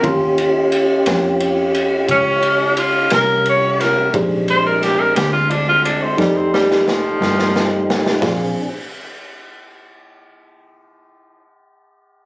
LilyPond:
<<
  \new Staff \with { instrumentName = "Grand piano" } { \time 12/8 \key ees \major \tempo 4. = 59 <des' f' g' c'''>1. | <d' g' aes' c''>2. <ees' g' a' d''>2. | <f' aes' c'' d''>8 r1 r4. | }
  \new Staff \with { instrumentName = "Tenor saxophone" } { \time 12/8 \key ees \major r2. des'4 f'8 bes'8 des''8 bes'8 | r8 c''16 bes'16 g'16 bes'16 g'16 f'16 d'16 f'16 d'16 c'16 g16 c'16 g8 f2 | r1. | }
  \new Staff \with { instrumentName = "Tonewheel organ" } { \time 12/8 \key ees \major <des' f' g'>1. | <ees aes a c'>8 <aes c' d'>2~ <aes c' d'>8 <a ees' g'>2. | <c' d' aes'>8 r1 r4. | }
  \new Staff \with { instrumentName = "Fingered electric bass" } { \clef bass \time 12/8 \key ees \major ees,4. f,4. des,4. c,4. | bes,,4. d,4. f,4. g,4. | bes,,8 r1 r4. | }
  \new DrumStaff \with { instrumentName = "Drums" } \drummode { \time 12/8 <bd cymr>8 cymr8 cymr8 <cymr sn>8 cymr8 cymr8 <bd cymr>8 cymr8 cymr8 <cymr sn>8 cymr8 <cymr sn>8 | <bd cymr>8 cymr8 <cymr sn>8 <cymr sn>8 cymr8 cymr8 <bd sn>8 sn16 sn16 sn8 sn16 sn16 sn8 sn16 sn16 | <hho bd sn>4. r4. r4. r4. | }
>>